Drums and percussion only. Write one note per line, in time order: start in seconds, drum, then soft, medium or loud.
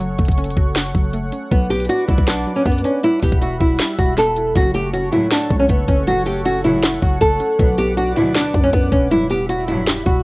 0.18 kick medium
0.18 closed hi-hat medium
0.18 open hi-hat medium
0.25 kick loud
0.25 closed hi-hat medium
0.31 closed hi-hat medium
0.38 closed hi-hat medium
0.44 closed hi-hat medium
0.50 closed hi-hat medium
0.57 kick loud
0.76 snare loud
0.76 clap loud
0.76 closed hi-hat medium
0.95 kick loud
1.13 closed hi-hat medium
1.32 closed hi-hat medium
1.51 kick loud
1.51 closed hi-hat medium
1.71 closed hi-hat soft
1.75 closed hi-hat medium
1.80 closed hi-hat medium
1.85 closed hi-hat medium
1.90 closed hi-hat medium
2.09 kick loud
2.18 kick loud
2.27 snare loud
2.27 clap loud
2.27 closed hi-hat medium
2.66 kick medium
2.66 closed hi-hat soft
2.72 closed hi-hat medium
2.78 closed hi-hat medium
2.84 closed hi-hat medium
3.03 closed hi-hat medium
3.22 kick medium
3.22 open hi-hat medium
3.32 kick loud
3.42 closed hi-hat medium
3.60 kick loud
3.79 snare loud
3.79 clap medium
3.79 closed hi-hat medium
3.98 kick medium
4.17 snare medium
4.17 closed hi-hat medium
4.36 closed hi-hat medium
4.55 kick loud
4.55 closed hi-hat medium
4.74 closed hi-hat medium
4.94 closed hi-hat medium
5.12 closed hi-hat medium
5.31 snare loud
5.31 clap medium
5.31 closed hi-hat medium
5.50 kick loud
5.69 kick loud
5.69 closed hi-hat medium
5.88 kick loud
5.88 closed hi-hat medium
6.07 closed hi-hat medium
6.26 open hi-hat medium
6.45 closed hi-hat medium
6.64 closed hi-hat medium
6.83 snare loud
6.83 clap loud
6.83 closed hi-hat medium
7.02 kick loud
7.21 kick loud
7.21 closed hi-hat medium
7.40 closed hi-hat medium
7.59 kick loud
7.59 closed hi-hat medium
7.78 closed hi-hat medium
7.97 closed hi-hat medium
8.16 closed hi-hat medium
8.35 snare loud
8.35 clap loud
8.35 closed hi-hat medium
8.54 kick loud
8.73 kick medium
8.73 closed hi-hat medium
8.92 kick medium
8.92 closed hi-hat medium
9.11 closed hi-hat medium
9.30 open hi-hat medium
9.49 closed hi-hat loud
9.68 closed hi-hat medium
9.87 snare loud
9.87 clap loud
9.87 closed hi-hat medium
10.06 kick loud